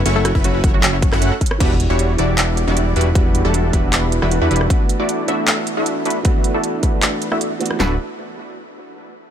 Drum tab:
CC |--------------------------------|x-------------------------------|--------------------------------|--------------------------------|
HH |x---x---x---x---x---x---x---xx--|x---x---x---x---x---x---x---xx--|x---x---x---x---x---x---x---xx--|x---x---x---x---x---x---x---xx--|
CP |----------------x-----x---------|----------------x---------------|----------------x---------------|----------------x---------------|
SD |----r-----------------r-------r-|--------------------------------|----------------------r-------r-|--------------------------------|
BD |------o-----o-------o-------o---|o-------------------------------|o-----------o-------------------|o-------------------------------|

CC |--------------------------------|--------------------------------|
HH |x---x---x---x---x---x---x---xx--|--------------------------------|
CP |----------------x---------------|x-------------------------------|
SD |----------------------r-------r-|o-------------------------------|
BD |o-----------o-------------------|--------------------------------|